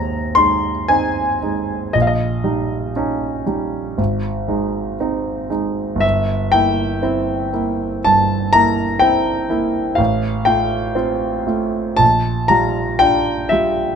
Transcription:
Already playing: D#2 G#3 C4 D#4 G#5 A#5
0.35 G#3 D#4 C6
0.88 C4 D#4 G#5
1.42 G#3 D#4
1.93 A#1 D#5
2.02 F5
2.07 D#5
2.44 G3 D#4
2.96 C#4 D#4
3.46 G3 D#4
3.98 G#1
4.48 G#3 D#4
5.00 C4 D#4
5.50 G#3 D#4
5.95 G1
6.00 E5
6.52 A#3 E4 G5
7.03 C4 E4
7.53 A#3 E4
8.04 G2 A5
8.53 A#3 E4 A#5
8.99 C4 E4 G5
9.50 A#3 E4
9.95 A1 F5
10.45 A3 F4 G5
10.95 C4 F4
11.47 A3 F4
11.97 A#1 A5
12.48 G3 F4 A#5
12.99 D4 F4 G5
13.49 G3 F4 E5

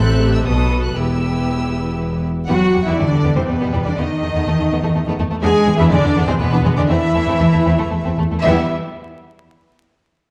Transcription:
Already playing: A1 A2 C4 A4 E5 F#6
0.20 G4
0.34 E6
0.45 B1 B2 B3 F#4 A4 B4 D#6
0.84 F#6
0.95 E1 E2 B3 E4 G4 B4 E6
2.48 E2 F#3 G3 B3 F#4 F#5
2.73 E2 G3
2.86 E2 E3 G3 B3 E4 E5
2.97 E2 D3 G3 D4 D5
3.11 E2 G3
3.23 E2 G3 B3
3.36 E2 C3 G3 C4 C5
3.48 E2 B2 G3 B3 B4
3.60 E2 G3 B3
3.73 E2 G3
3.85 E2 D3 G3 D4 D5
3.97 E2 D#3 A3 B3 D#4 D#5
4.22 E2 A3
4.34 E2 A3 B3
4.46 E2 A3
4.58 E2 A3
4.70 E2 A3 B3
4.82 E2 A3
4.94 E2 A3
5.06 E2 A3 B3
5.18 E2 A3
5.30 E2 A3
5.42 E2 G#3 B3 D4 G#4 G#5
5.66 E2 G#3 B3
5.77 E2 E3 B3 D4 E4 E5
5.88 E2 D3 G#3 D4 D5
6.03 E2 G#3 B3
6.15 E2 B3 D4
6.26 E2 C3 G#3 C4 C5
6.38 E2 B2 G#3 B3 B4
6.52 E2 B3 D4
6.64 E2 G#3
6.76 E2 D3 G#3 B3 D4 D5
6.88 E2 E3 A3 C4 E4 E5
7.14 E2 A3
7.26 E2 A3 C4
7.39 E2 A3
7.52 E2 A3
7.65 E2 A3 C4
7.78 E2 A3
7.90 E2 A3
8.04 E2 A3 C4
8.17 E2 A3
8.31 E2 A3
8.43 E2 E3 G3 B3 E4 E5

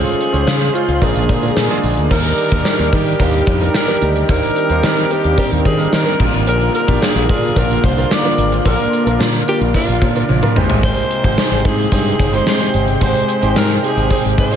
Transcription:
Already playing: C#3 G#3 C#4 F4 G#4 C5
0.07 closed hi-hat
0.21 closed hi-hat
0.32 C#2 G#3 C#4 F4 C5, closed hi-hat
0.47 C#3, snare, tambourine, cowbell
0.61 closed hi-hat
0.74 G#3 C#4 F4 C5, closed hi-hat
0.88 C#2, closed hi-hat
1.01 A#1 A#2 D3 G#3 A#3 D4 F4 G#4 A#4, kick, closed hi-hat, cowbell
1.15 A#1, closed hi-hat
1.29 A#2, kick, closed hi-hat, cowbell
1.42 G#3 D4 F4 A#4, closed hi-hat
1.56 A#2, snare, tambourine, cowbell
1.70 G#3 D4 F4 G#4, closed hi-hat
1.83 A#1, open hi-hat
1.97 D2, closed hi-hat
2.10 D#2 D#3 G3 A#3 D4 D#4 G4 A#4 D5, kick, crash, cowbell
2.24 closed hi-hat
2.38 closed hi-hat
2.51 D#2 G3 A#3 D4 D#4 A#4, kick, closed hi-hat
2.65 snare, tambourine, cowbell
2.79 D#2, closed hi-hat
2.92 D#3 G3 A#3 D4 D#4 G4 A#4, kick, closed hi-hat
3.06 closed hi-hat
3.19 D#2 G3 A#3 D4 D#4 G4 A#4, kick, closed hi-hat, cowbell
3.33 closed hi-hat
3.47 F2, kick, closed hi-hat, cowbell
3.60 G3 A#3 D4 D#4 A#4, closed hi-hat
3.74 A#4, snare, tambourine, cowbell
3.87 G3 A#3 D4 D#4 G4, closed hi-hat
4.02 D2, closed hi-hat
4.16 closed hi-hat
4.28 D#2 D#3 G3 A#3 C4 D4 D#4 A#4 C5, kick, closed hi-hat, cowbell
4.42 closed hi-hat
4.56 closed hi-hat
4.70 D#2 G3 A#3 D4 D#4 C5, closed hi-hat
4.83 D#3, snare, tambourine, cowbell
4.97 closed hi-hat
5.10 G3 A#3 D4 D#4 G4 A#4, closed hi-hat
5.24 D#2, closed hi-hat
5.37 G3 A#3 D4 D#4 G4 A#4, kick, closed hi-hat, cowbell
5.51 D#2, closed hi-hat
5.65 D#3 G#4, kick, closed hi-hat, cowbell
5.78 G3 A#3 D4 D#4 A#4, closed hi-hat
5.93 D#3 A#4, snare, tambourine, cowbell
6.05 G3 A#3 D4 D#4 A#4, closed hi-hat
6.19 A#1 A#2 D3 A#3 D4 F4 A#4, kick, crash
6.33 G#1, closed hi-hat
6.47 A#1 A#4, closed hi-hat, cowbell
6.61 closed hi-hat
6.75 A#4, closed hi-hat
6.87 A#1 D4 F4 G4, kick, closed hi-hat
7.01 G#4, snare, tambourine, cowbell
7.16 A#1, closed hi-hat
7.28 A#2 D4 F4 G#4 A#4, kick, closed hi-hat
7.43 closed hi-hat
7.56 A#1 D4 F4 A#4, kick, closed hi-hat, cowbell
7.70 closed hi-hat
7.84 C2 C5, kick, closed hi-hat, cowbell
7.97 D4 F4 A#4, closed hi-hat
8.11 D5, snare, tambourine, cowbell
8.24 D4 F4 A#4, closed hi-hat
8.38 G#1 A#2, closed hi-hat
8.52 closed hi-hat
8.65 A#1 D4 F4 A#4, kick, closed hi-hat, cowbell
8.79 closed hi-hat
8.93 closed hi-hat
9.06 A#1 D4 F4 A#4, closed hi-hat
9.19 A#2, snare, tambourine, cowbell
9.34 closed hi-hat
9.47 D4 F4 G4 A#4, closed hi-hat
9.61 A#1, closed hi-hat
9.74 D4 F4 A#4, kick, closed hi-hat, cowbell
9.88 A#1, closed hi-hat
10.02 A#2, kick, closed hi-hat, cowbell
10.15 D4 F4 A#4, closed hi-hat
10.29 A#1, high tom, cowbell
10.42 D4 F4 A#4, mid tom
10.56 G#1 G#2 C3 G#3 C4 D#4 G4 B4 G5, mid tom
10.64 C5
10.70 floor tom
10.83 C5, kick, closed hi-hat, cowbell
10.97 closed hi-hat
11.11 closed hi-hat
11.24 G#1 G#3 C4 D#4 G4 C5, kick, closed hi-hat
11.37 snare, tambourine, cowbell
11.51 G#1, closed hi-hat
11.65 G#2 G#3 C4 D#4 G4 G#4 C5, kick, closed hi-hat
11.78 closed hi-hat
11.92 G2 G#3 C4 D#4 G#4 C5 G5, kick, closed hi-hat, cowbell
12.06 closed hi-hat
12.19 G1, kick, closed hi-hat, cowbell
12.32 G#3 C4 D#4 G4 C5, closed hi-hat
12.47 C5, snare, tambourine, cowbell
12.60 G#3 C4 D#4 G4 C5, closed hi-hat
12.74 G1 G#2, closed hi-hat
12.88 closed hi-hat
13.01 G#1 G#3 C4 D#4 G4 C5, kick, closed hi-hat, cowbell
13.15 closed hi-hat
13.29 closed hi-hat
13.41 G#1 G#3 C4 D#4 G4 C5, closed hi-hat
13.56 G#2 A#4, snare, tambourine, cowbell
13.70 closed hi-hat
13.78 A#4
13.83 G#3 C4 D#4 G4 G#4 C5, closed hi-hat
13.97 G#1, closed hi-hat
14.10 G#3 C4 D#4 G4 G#4 C5, kick, closed hi-hat, cowbell
14.25 G#1, closed hi-hat
14.38 G#2 C5, kick, closed hi-hat, cowbell
14.51 G#3 C4 D#4 G4 C5, closed hi-hat

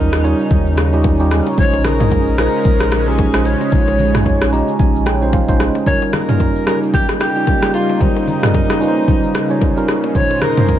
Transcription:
Already playing: D#2 C#3 G3 C#4 D#4 F4 G4 A#4 C5
0.13 cross-stick, shaker
0.23 G3 C#4 D#4 F4 C#5, shaker
0.39 shaker
0.51 D#2, kick, low conga, shaker
0.66 shaker
0.77 cross-stick, low bongo, shaker
0.92 G3 C#4 D#4 F4 G4, shaker
1.04 kick, high bongo, shaker
1.19 G3 C#4 D#4 F4 G4, shaker
1.31 cross-stick, high bongo, shaker
1.46 low bongo, shaker
1.57 A#1 G#3 C#4 D#4 F4 C5 C#5, kick, low conga, shaker
1.73 high bongo, shaker
1.84 A#4, cross-stick, low conga, shaker
2.00 G#3 C#4 D#4 F4 G#4, mid tom, low bongo, shaker
2.11 kick, high bongo, shaker
2.27 shaker
2.38 G#3 C#4 D#4 F4 A#4 C5, cross-stick, shaker
2.54 shaker
2.65 A#1, kick, low conga, shaker
2.80 cross-stick, shaker
2.92 cross-stick, low bongo, shaker
3.07 G#3 C#4 D#4 F4 G4 G#4, shaker
3.18 kick, high bongo, shaker
3.34 G#3 C#4 D#4 F4 C5, cross-stick, shaker
3.45 C#5, high bongo, shaker
3.61 low bongo, shaker
3.72 A#1 G#3 C#4 D#4 F4 C#5, kick, low conga, shaker
3.88 high bongo, shaker
3.99 low conga, shaker
4.14 G#3 C#4 D#4 F4 C#5, cross-stick, mid tom, low bongo, shaker
4.26 kick, high bongo, shaker
4.42 cross-stick, shaker
4.52 G#3 C#4 D#4 F4 G4 A#5, shaker
4.68 shaker
4.79 A#1 G#5, kick, low conga, shaker
4.95 shaker
5.06 G5, cross-stick, low bongo, shaker
5.21 G#3 C#4 D#4 F4 C5, shaker
5.33 F5, kick, high bongo, shaker
5.48 G#3 C#4 D#4 F4 C5, kick, shaker
5.60 D#5, cross-stick, high bongo, shaker
5.75 low bongo, shaker
5.86 C#3 G3 A#3 C#4 D#4 F4 A#4 C#5, kick, low conga, shaker
6.02 high bongo, shaker
6.08 C#5
6.13 A#4, cross-stick, low conga, shaker
6.28 G3 C#4 D#4 F4 A#4, mid tom, low bongo, shaker
6.40 kick, high bongo, shaker
6.56 shaker
6.66 G3 C#4 D#4 F4 G4 A#4, cross-stick, shaker
6.82 shaker
6.94 G4, kick, low conga, shaker
7.09 cross-stick, shaker
7.20 G4, cross-stick, low bongo, shaker
7.35 G3 C#4 D#4 F4 G4, shaker
7.47 kick, high bongo, shaker
7.62 G3 C#4 D#4 F4 G4, cross-stick, shaker
7.74 F4, high bongo, shaker
7.89 low bongo, shaker
8.00 G3 C#4 D#4 F4 C5, kick, low conga, shaker
8.16 high bongo, shaker
8.27 low conga, shaker
8.43 G3 C#4 D#4 F4 A#4, cross-stick, mid tom, low bongo, shaker
8.54 kick, high bongo, shaker
8.70 cross-stick, shaker
8.80 G3 C#4 D#4 F4 B4, shaker
8.88 C5
8.96 shaker
9.08 kick, low conga, shaker
9.24 shaker
9.35 cross-stick, low bongo, shaker
9.50 G3 C#4 D#4 F4 C#5, shaker
9.61 kick, high bongo, shaker
9.76 G3 C#4 D#4 F4 A#4, shaker
9.88 cross-stick, high bongo, shaker
10.04 low bongo, shaker
10.14 A#2 G#3 C#4 D#4 F4 C5 C#5, kick, low conga, shaker
10.31 high bongo, shaker
10.42 A#4, cross-stick, low conga, shaker
10.57 A#2 G#3 C#4 D#4 F4 C5, mid tom, low bongo, shaker
10.69 kick, high bongo, shaker

